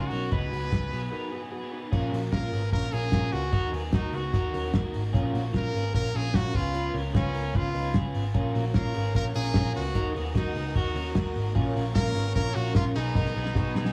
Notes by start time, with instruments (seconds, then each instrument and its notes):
Already playing: clean electric guitar C#4 G#4, transistor combo organ D#4 F#4 A#4
0.00 overdriven electric guitar C#4 D#4 A#4
0.06 trumpet F#4
0.11 picked electric bass B1, clean electric guitar C#4 A#4, open hi-hat
0.31 picked electric bass C#2, overdriven electric guitar F#3 B3 D#4 G#4, clean electric guitar D#4 B4, transistor combo organ F#4 G#4 B4, trumpet B4, kick, closed hi-hat
0.52 picked electric bass C#2, clean electric guitar B3 F#4, open hi-hat
0.60 overdriven electric guitar B3 D#4 G#4
0.71 picked electric bass C#2, transistor combo organ F#4 G#4 B4, kick, snare, closed hi-hat
0.91 picked electric bass B1, overdriven electric guitar F#3 B3 D#4 G#4, clean electric guitar B3 G#4, open hi-hat
1.11 overdriven electric guitar F#3 B3 D#4 G#4, clean electric guitar D#4 A#4, transistor combo organ F#4 G#4 B4
1.32 clean electric guitar B3 G#4
1.51 clean electric guitar B3 G#4, transistor combo organ F#4 G#4 B4
1.61 overdriven electric guitar B3 D#4 G#4
1.72 clean electric guitar D#4 B4
1.92 picked electric bass A#1, overdriven electric guitar A#3 C#4 F4 A#4, transistor combo organ C#4 F4 A#4, clean electric guitar C#4 G#4, kick, crash
2.12 picked electric bass A#1, overdriven electric guitar A#2 F3 A#3 C#4 F4 A#4, clean electric guitar A#3 F#4, open hi-hat
2.32 picked electric bass A#1, clean electric guitar A#3 F4, transistor combo organ C#4 F4 A#4, trumpet A#4, kick, snare
2.42 overdriven electric guitar A#3 C#4 F4 A#4
2.52 picked electric bass G#1, clean electric guitar B3 G#4, open hi-hat
2.70 picked electric bass A#1, overdriven electric guitar A#3 C#4 F4 A#4, transistor combo organ C#4 F4 A#4, clean electric guitar C#4 A#4, trumpet A#4, kick, closed hi-hat
2.92 picked electric bass A#1, transistor combo organ C#4 F4 A#4, clean electric guitar C#4 A#4, trumpet G#4, open hi-hat
3.01 overdriven electric guitar A#3 C#4 F4 A#4
3.12 picked electric bass A#1, transistor combo organ C#4 F4 A#4, kick, snare, closed hi-hat
3.21 overdriven electric guitar A#3 C#4 F4 A#4
3.32 picked electric bass C#2, clean electric guitar B3 G#4, trumpet F#4, open hi-hat
3.53 picked electric bass D#2, overdriven electric guitar F#3 D#4 F#4 A#4, transistor combo organ D#4 F#4 A#4, clean electric guitar D#4 A#4, kick, closed hi-hat
3.72 picked electric bass D#2, overdriven electric guitar D#3 F#3 D#4 F#4 A#4, clean electric guitar B3 G#4, open hi-hat
3.92 picked electric bass D#2, clean electric guitar A#3 F#4, transistor combo organ D#4 F#4 A#4, trumpet D#4, kick, snare, closed hi-hat
4.03 overdriven electric guitar D#4 F#4 A#4
4.13 picked electric bass C#2, clean electric guitar B3 G#4, trumpet F#4, open hi-hat
4.32 picked electric bass D#2, overdriven electric guitar F#3 D#4 F#4 A#4, transistor combo organ D#4 F#4 A#4, clean electric guitar D#4 A#4, kick, closed hi-hat
4.53 picked electric bass D#2, clean electric guitar C#4 A#4, transistor combo organ D#4 F#4 A#4, open hi-hat
4.64 overdriven electric guitar D#4 F#4 A#4
4.73 picked electric bass D#2, clean electric guitar A#3 F#4, transistor combo organ D#4 F#4 A#4, kick, snare, closed hi-hat
4.84 overdriven electric guitar D#4 F#4 A#4
4.94 picked electric bass G#1, open hi-hat
5.13 picked electric bass A#1, overdriven electric guitar A#3 C#4 F4, clean electric guitar C#4 G#4, transistor combo organ C#4 F4 A#4, kick, closed hi-hat
5.18 overdriven electric guitar A#4
5.33 picked electric bass A#1, overdriven electric guitar A#2 F3 A#3 C#4 F4 A#4, clean electric guitar A#3 F#4, open hi-hat
5.53 picked electric bass A#1, clean electric guitar A#3 F4, transistor combo organ C#4 F4 A#4, trumpet A#4, kick, snare, closed hi-hat
5.66 overdriven electric guitar A#3 C#4 F4 A#4
5.73 picked electric bass G#1, clean electric guitar B3 G#4, open hi-hat
5.94 picked electric bass A#1, overdriven electric guitar A#3 C#4 F4 A#4, transistor combo organ C#4 F4 A#4, clean electric guitar C#4 A#4, trumpet A#4, kick, closed hi-hat
6.14 picked electric bass A#1, clean electric guitar C#4 A#4, transistor combo organ C#4 F4 A#4, trumpet G#4, open hi-hat
6.25 overdriven electric guitar A#3 C#4 F4 A#4
6.34 picked electric bass A#1, transistor combo organ C#4 F4 A#4, trumpet F#4, kick, snare, closed hi-hat
6.45 overdriven electric guitar A#3 C#4 F4 A#4
6.54 picked electric bass C#2, overdriven electric guitar C#3 G#3 B3 F4 G#4, clean electric guitar B3 G#4, transistor combo organ C#4 F4 B4, trumpet F4, kick, open hi-hat
6.75 clean electric guitar F4 B4, closed hi-hat
6.94 picked electric bass C#2, overdriven electric guitar C#3 G#3 B3 F4, clean electric guitar C#4 A#4, open hi-hat
6.98 overdriven electric guitar G#4
7.13 picked electric bass C#2, clean electric guitar B3 G#4, transistor combo organ C#4 F4 B4, trumpet C#4, kick, snare, closed hi-hat
7.25 overdriven electric guitar B3 F4 G#4
7.34 picked electric bass C#2, clean electric guitar C#4 A#4, open hi-hat
7.54 picked electric bass C#2, overdriven electric guitar G#3 B3 F4, transistor combo organ C#4 F4 B4, clean electric guitar F4 B4, trumpet F4, kick, closed hi-hat
7.58 overdriven electric guitar G#4
7.74 picked electric bass C#2, transistor combo organ C#4 F4 B4, clean electric guitar D#4 B4, open hi-hat
7.84 overdriven electric guitar B3 F4 G#4
7.94 picked electric bass C#2, clean electric guitar B3 G#4, transistor combo organ C#4 F4 B4, kick, snare, closed hi-hat
8.05 overdriven electric guitar B3 F4 G#4
8.14 picked electric bass G#1, open hi-hat
8.34 picked electric bass A#1, overdriven electric guitar A#3 C#4 F4 A#4, transistor combo organ C#4 F4 A#4, clean electric guitar C#4 G#4, string machine A#4 C#5 F5 C#6, kick, closed hi-hat
8.54 picked electric bass A#1, overdriven electric guitar A#2 F3 A#3 C#4 F4 A#4, clean electric guitar A#3 F#4, open hi-hat
8.74 picked electric bass A#1, clean electric guitar A#3 F4, transistor combo organ C#4 F4 C#5, trumpet A#4, kick, snare, closed hi-hat
8.85 overdriven electric guitar A#3 C#4 F4 A#4
8.94 picked electric bass G#1, clean electric guitar B3 G#4, open hi-hat
9.13 picked electric bass A#1, overdriven electric guitar A#3 C#4 F4 A#4, transistor combo organ C#4 F4 A#4, clean electric guitar C#4 A#4, trumpet A#4, kick, closed hi-hat
9.34 picked electric bass A#1, clean electric guitar C#4 A#4, transistor combo organ C#4 F4 A#4, trumpet G#4, open hi-hat
9.44 overdriven electric guitar A#3 C#4 F4 A#4
9.54 picked electric bass A#1, transistor combo organ C#4 F4 A#4, kick, snare, closed hi-hat
9.65 overdriven electric guitar A#3 C#4 F4 A#4
9.74 picked electric bass C#2, clean electric guitar B3 G#4, trumpet F#4, open hi-hat
9.93 picked electric bass D#2, overdriven electric guitar F#3 D#4 F#4 A#4, transistor combo organ D#4 F#4 A#4, clean electric guitar D#4 A#4, string machine D#5 F#5 D#6, kick, closed hi-hat
10.15 picked electric bass D#2, overdriven electric guitar D#3 F#3 D#4 F#4 A#4, clean electric guitar B3 G#4, open hi-hat
10.35 picked electric bass D#2, clean electric guitar A#3 F#4, transistor combo organ D#4 F#4 A#4, trumpet D#4, kick, snare, closed hi-hat
10.45 overdriven electric guitar D#4 F#4 A#4
10.55 picked electric bass C#2, clean electric guitar B3 G#4, open hi-hat
10.73 picked electric bass D#2, overdriven electric guitar F#3 D#4 F#4 A#4, transistor combo organ D#4 F#4 A#4, clean electric guitar D#4 A#4, trumpet F#4, kick, closed hi-hat
10.95 picked electric bass D#2, clean electric guitar C#4 A#4, transistor combo organ D#4 F#4 A#4, open hi-hat
11.04 overdriven electric guitar D#4 F#4 A#4
11.15 picked electric bass D#2, clean electric guitar A#3 F#4, transistor combo organ D#4 F#4 A#4, kick, snare, closed hi-hat
11.26 overdriven electric guitar D#4 F#4 A#4
11.35 picked electric bass G#1, open hi-hat
11.54 picked electric bass A#1, overdriven electric guitar A#3 C#4 F4, transistor combo organ C#4 F4 A#4, clean electric guitar C#4 G#4, string machine C#5 F5 C#6, kick, closed hi-hat
11.59 overdriven electric guitar A#4
11.76 picked electric bass A#1, overdriven electric guitar A#2 F3 A#3 C#4 F4 A#4, clean electric guitar A#3 F#4, open hi-hat
11.95 picked electric bass A#1, clean electric guitar A#3 F4, transistor combo organ C#4 F4 A#4, trumpet A#4, kick, snare, closed hi-hat
12.05 overdriven electric guitar A#3 C#4 F4 A#4
12.15 picked electric bass G#1, clean electric guitar B3 G#4, open hi-hat
12.35 picked electric bass A#1, overdriven electric guitar A#3 C#4 F4 A#4, transistor combo organ C#4 F4 A#4, clean electric guitar C#4 A#4, trumpet A#4, kick, closed hi-hat
12.55 picked electric bass A#1, transistor combo organ C#4 F4 A#4, clean electric guitar C#4 A#4, trumpet F#4, open hi-hat
12.65 overdriven electric guitar A#3 C#4 F4 A#4
12.75 picked electric bass A#1, transistor combo organ C#4 F4 A#4, trumpet F4, kick, snare, closed hi-hat
12.86 overdriven electric guitar A#3 C#4 F4 A#4
12.95 picked electric bass B1, overdriven electric guitar B2 D#3 F#3 B3 D#4 G#4, transistor combo organ B3 D#4 G#4, clean electric guitar B3 G#4, trumpet D#4, string machine G#4 D#5 F#5 B5, open hi-hat
13.15 clean electric guitar D#4 A#4, kick, snare
13.25 snare
13.35 picked electric bass B1, overdriven electric guitar B2 D#3 F#3 B3 D#4 G#4, clean electric guitar B3 G#4
13.46 snare
13.55 picked electric bass B1, transistor combo organ B3 D#4 G#4, clean electric guitar B3 F#4, kick, snare
13.65 overdriven electric guitar F#3 B3 D#4 G#4
13.75 picked electric bass B1, clean electric guitar B3 G#4, snare
13.85 snare